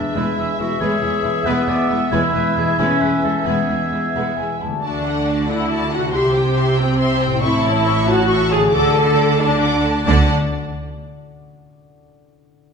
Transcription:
Already playing: harp E3 E4 G#4, trombone section E3 G#3, french horn section B3 B4, clarinet D4, trumpet E5, violin section E5
0.15 double bass section E1, cello section E2, viola section G#3, clarinet E4, violin section B4, oboe E5, harp E5
0.37 double bass section E1, cello section E2, viola section G#3, violin section G#4, harp G#5
0.59 double bass section E1, cello section E2, viola section G#3, violin section E4, clarinet F#4, harp E5
0.80 double bass section E1, cello section E2, harp E3, viola section G#3, clarinet G#4, violin section B4, oboe C#5
1.01 double bass section E1, cello section E2, viola section G#3, harp E4, violin section G#4
1.23 double bass section E1, cello section E2, viola section G#3, violin section E4, harp G#4
1.45 double bass section E1, cello section E2, viola section G#3, clarinet B3, violin section B4, oboe B4, harp E5
1.67 double bass section E1, cello section E2, viola section G#3, violin section G#4, oboe D5, harp G#5
1.89 double bass section E1, cello section E2, viola section G#3, violin section E4, oboe E5, harp E5
2.11 double bass section E1, cello section E2, harp E3, viola section G#3, clarinet E4, violin section B4, oboe C#5
2.33 double bass section E1, cello section E2, viola section G#3, harp E4, violin section G#4, oboe B4
2.56 double bass section E1, cello section E2, viola section G#3, violin section E4, harp G#4, oboe G#4
2.78 double bass section E1, cello section E2, viola section G#3, clarinet C#4, violin section B4, oboe C#5, harp E5
3.01 double bass section E1, cello section E2, viola section G#3, violin section G#4, oboe B4, harp G#5
3.23 double bass section E1, cello section E2, viola section G#3, violin section E4, oboe A4, harp E5
3.45 double bass section E1, cello section E2, harp E3, viola section G#3, clarinet B3, oboe G#4, violin section B4
3.69 double bass section E1, cello section E2, viola section G#3, harp E4, violin section G#4
3.92 double bass section E1, cello section E2, viola section G#3, violin section E4, harp G#4
4.14 double bass section E1, cello section E2, viola section G#3, violin section B4, harp E5, flute section F#5
4.37 double bass section E1, cello section E2, viola section G#3, violin section G#4, flute section G#5, harp G#5
4.60 double bass section E1, cello section E2, viola section G#3, violin section E4, harp E5, flute section A5
4.66 harp D3
4.70 harp A3
4.75 harp F#4
4.79 french horn section D4, harp D5
4.83 double bass section D2, cello section D3, viola section D4, violin section F#4 D5 A5
5.06 violin section A4 F#5
5.27 violin section F#4 D5 A5
5.48 french horn section E4, viola section E4, violin section A4 F#5
5.70 violin section F#4 D5 A5
5.92 french horn section F#4, viola section F#4, violin section A4 F#5
5.97 harp C3
6.01 harp C4
6.06 harp E4
6.11 double bass section C2, cello section C3, violin section G4 E5 C6, french horn section G4, harp E5
6.15 viola section G4
6.34 violin section C5 G5
6.57 violin section G4 E5 C6
6.76 french horn section C4, violin section C5 G5
6.80 viola section C4
6.99 violin section G4 E5 C6
7.20 violin section C5 G5
7.26 harp A2
7.30 harp C#4
7.35 harp E4
7.39 french horn section E4, harp E5, violin section C#6
7.43 double bass section A1, cello section A2, viola section E4, violin section A4 E5
7.62 violin section C#5 A5
7.86 violin section A4 E5 C#6
8.07 viola section F#4, french horn section F#4, violin section C#5 A5
8.29 violin section A4 E5 C#6
8.50 french horn section G#4, viola section G#4, violin section C#5 A5
8.56 harp D3
8.60 harp D4
8.65 harp F#4
8.69 cello section D3, french horn section A4, harp D5, violin section D6
8.73 double bass section D2, viola section A4, violin section A4 F#5
8.94 violin section D5 A5
9.16 violin section A4 F#5 D6
9.38 french horn section D4, viola section D4, violin section D5 A5
9.61 violin section A4 F#5 D6
9.84 violin section D5 A5
10.03 harp D3 D4, violin section D5 F#5 A5
10.08 double bass section D2, cello section D3, french horn section D4, viola section D4, harp F#4 D5
10.13 harp F#5

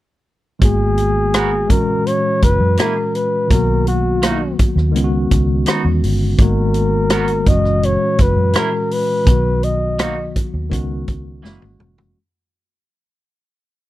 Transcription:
0.59 fingered electric bass G#1, tine electric piano D#3 G#3 A#3 B3 F#4, kick, closed hi-hat
0.65 flugelhorn G#4
0.98 closed hi-hat
1.34 clean electric guitar B3 F#4 A#4, cross-stick, closed hi-hat
1.66 tine electric piano A#2 E3 G#3
1.70 fingered electric bass F#1, tine electric piano C#4 F#4, flugelhorn A#4, kick, closed hi-hat
2.07 flugelhorn C#5, closed hi-hat
2.42 fingered electric bass F#1, flugelhorn B4, kick, closed hi-hat
2.60 fingered electric bass F#2
2.77 clean electric guitar A#3 E4 G#4, flugelhorn A#4, cross-stick, closed hi-hat
3.15 flugelhorn B4, closed hi-hat
3.47 fingered electric bass B1, tine electric piano D#3 F#3 A#3, flugelhorn A#4, kick, closed hi-hat
3.53 tine electric piano B3 F#4
3.87 flugelhorn F#4, closed hi-hat
4.22 clean electric guitar A#3 D#4 F#4, cross-stick, closed hi-hat
4.59 muted fingered electric bass stroke, kick, closed hi-hat
4.76 fingered electric bass D#2, cross-stick
4.91 fingered electric bass C#2, tine electric piano D#3 G#3 B3
4.96 tine electric piano C#4 F4, closed hi-hat
5.04 tine electric piano F#4
5.31 fingered electric bass C#2, kick, closed hi-hat
5.66 clean electric guitar B3 D#4 F#4, cross-stick, closed hi-hat
5.85 fingered electric bass E2
6.02 fingered electric bass G1, open hi-hat
6.38 fingered electric bass G#1, tine electric piano D#3 G#3 A#3 B3 F#4, kick, closed hi-hat
6.42 flugelhorn A#4
6.74 closed hi-hat
7.10 clean electric guitar B3 F#4 A#4, cross-stick, closed hi-hat
7.28 closed hi-hat
7.44 fingered electric bass F#1, tine electric piano A#2 E3 G#3, kick, closed hi-hat
7.49 tine electric piano C#4 F#4, flugelhorn D#5
7.65 cross-stick
7.83 flugelhorn C#5, closed hi-hat
8.19 fingered electric bass F#1, flugelhorn B4, kick, closed hi-hat
8.37 fingered electric bass F#2
8.53 clean electric guitar E4 G#4 A#4, flugelhorn A#4, cross-stick, closed hi-hat
8.91 flugelhorn B4, open hi-hat
9.24 fingered electric bass B1, tine electric piano D#3 F#3, kick, closed hi-hat
9.29 tine electric piano B3 F#4
9.63 flugelhorn D#5, closed hi-hat
9.99 clean electric guitar A#3 D#4 F#4, cross-stick, closed hi-hat
10.36 muted fingered electric bass stroke, kick, closed hi-hat
10.54 fingered electric bass D#2
10.69 fingered electric bass C#2, tine electric piano D#3 G#3 B3 C#4 F#4, kick, closed hi-hat
11.08 fingered electric bass C#2, kick, closed hi-hat
11.42 fingered electric bass F#1, tine electric piano E3 G#3 A#3 C#4 F#4, clean electric guitar A#3 E4 G#4, snare
11.62 fingered electric bass G#1, high tom
11.80 fingered electric bass F1, mid tom
11.98 floor tom

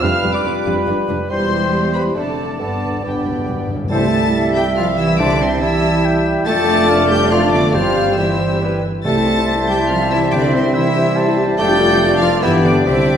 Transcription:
0.01 double bass section F1, cello section F2, french horn section G3 F4, bassoon G3, viola section G3 D4, violin section F4 B4 F6, trumpet section B4, oboe B4, clarinet F5, flute F6
0.23 double bass section F1, cello section F2, viola section G3 D4, violin section F4 B4
0.34 clarinet D5, flute D6, violin section D6
0.44 double bass section F1, cello section F2, viola section G3 D4, violin section F4 B4
0.66 double bass section F1, cello section F2, viola section G3 D4, violin section F4 B4
0.87 double bass section F1, cello section F2, viola section G3 D4, violin section F4 B4
1.08 double bass section F1, cello section F2, viola section G3 D4, violin section F4 B4
1.30 double bass section E1, cello section E2, viola section G3 E4, french horn section G3 E4, bassoon G3, violin section G4 C5 C6, oboe C5, trumpet section C5, clarinet C5, flute C6
1.94 clarinet B4, violin section B5, flute B5
2.15 double bass section F1, cello section F2, viola section D3 D4, bassoon A3, french horn section A3 D4, violin section A4 D5 A5, clarinet A4, trumpet section D5, oboe D5, flute A5
2.59 double bass section G1, cello section G2, timpani G2, viola section D3 D4, bassoon B3, french horn section B3 D4, clarinet A4, violin section B4 D5 A5, trumpet section D5, oboe D5, flute A5
2.68 timpani G2
2.76 timpani G2
2.84 timpani G2
2.92 timpani G2
2.99 timpani G2
3.04 cello section G2, timpani G2, viola section D3 D4, bassoon B3, french horn section B3 D4, clarinet G4, violin section B4 D5 G5, trumpet section D5, oboe D5, flute G5
3.15 timpani G2
3.23 timpani G2, cello section A2
3.29 timpani G2
3.38 timpani G2
3.46 timpani G2, cello section B2
3.53 timpani G2
3.61 timpani G2
3.68 timpani G2, cello section G2
3.76 timpani G2
3.84 timpani G2
3.91 double bass section C2, timpani C3, bassoon G3, french horn section G3 E4, viola section G3 E4, cello section A3, clarinet A4, trumpet section C5, flute E5, oboe E5, violin section A5 A6
4.56 cello section G3, clarinet G4, violin section G5 G6
4.77 cello section F3, clarinet F4, violin section F5 F6
4.98 cello section E3, clarinet E4, violin section E5 E6
5.19 timpani C3, cello section D3, viola section G3 E4, bassoon G3, french horn section G3 E4, clarinet D4, trumpet section C5, violin section D5 D6, flute E5, oboe A5
5.40 cello section C3, clarinet C4, violin section C5 C6
5.61 cello section E3, bassoon G3, viola section G3 E4, clarinet E4, violin section E5 E6, flute E5
6.05 oboe G5
6.46 double bass section F1, french horn section A3 F4, cello section A3, viola section A3 D4, bassoon A3, clarinet A4, trumpet section D5, flute D5, violin section A5 A6
6.89 oboe F5
7.09 cello section G3, clarinet G4, violin section G5 G6
7.31 cello section F3, viola section A3 D4, bassoon A3, french horn section A3 F4, clarinet F4, trumpet section D5, flute D5, violin section F5 F6, oboe A5
7.53 cello section D3, viola section B3, clarinet D4, violin section D5 D6
7.74 double bass section G1, timpani G2, cello section F3, bassoon G3, french horn section G3 G4, viola section C4 G4, clarinet F4, trumpet section C5, flute C5, violin section F5 F6, oboe G5
8.18 cello section E3, bassoon G3, french horn section G3 G4, viola section C4 G4, clarinet E4, trumpet section C5, flute C5, violin section E5 E6
8.61 bassoon G3, french horn section G3 G4, viola section B3 G4, flute B4, trumpet section B4
9.05 double bass section C2, timpani C3, bassoon G3, french horn section G3 E4, cello section A3, viola section C4 G4, clarinet A4, trumpet section C5, oboe E5, flute E5, violin section A5 A6
9.15 viola section E4 C5
9.26 viola section C4 G4
9.37 viola section E4 C5
9.47 viola section C4 G4, oboe A5
9.57 viola section E4 C5
9.68 cello section G3, viola section C4 G4, clarinet G4, violin section G5 G6
9.80 viola section E4 C5
9.90 cello section F3, viola section C4 G4, clarinet F4, violin section F5 F6
10.01 viola section E4 C5
10.11 cello section E3, viola section C4 G4, clarinet E4, violin section E5 E6
10.22 viola section E4 C5
10.32 timpani C3, cello section D3, viola section C4 G4, clarinet D4, violin section D5 D6, oboe G5
10.43 viola section E4 C5
10.54 cello section C3, clarinet C4, viola section C4 G4, violin section C5 C6
10.65 viola section E4 C5
10.74 cello section E3, viola section C4 G4, clarinet E4, oboe E5, violin section E5 E6
10.85 viola section E4 C5
10.96 viola section C4 G4
11.06 viola section E4 C5
11.16 viola section C4 G4, oboe A5
11.27 viola section E4 C5
11.37 viola section C4 G4
11.47 viola section E4 C5
11.58 double bass section F1, cello section G3, french horn section A3 F4, bassoon A3, viola section F4 A4, clarinet G4, flute D5, trumpet section D5, violin section G5 G6
11.69 viola section D4 F4
11.79 viola section F4 A4
11.89 viola section D4 F4
12.00 viola section F4 A4
12.10 viola section D4 F4
12.21 cello section F3, viola section F4 A4, clarinet F4, violin section F5 F6
12.31 viola section D4 F4
12.42 double bass section G1, cello section E3, viola section B3 B4, bassoon B3, french horn section B3 G4, clarinet E4, flute D5, trumpet section D5, violin section E5 E6, oboe G5
12.53 viola section D4 D5
12.64 cello section D3, viola section B3 B4, clarinet D4, violin section D5 D6
12.75 viola section D4 D5
12.85 double bass section C2, timpani C3, cello section D3, bassoon C4, french horn section C4 G4, clarinet D4, viola section G4 C5, violin section D5 D6, flute E5, trumpet section E5, oboe G5
12.97 viola section E4 E5
13.07 viola section G4 C5

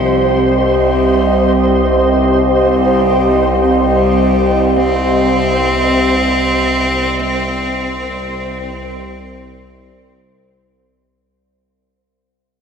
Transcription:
Already playing: synth drone C2, cello F3, analog synth pad C4 G4 D#5, synth texture C5
0.49 cello G3
2.62 cello G3
3.69 cello G3
4.77 cello C4

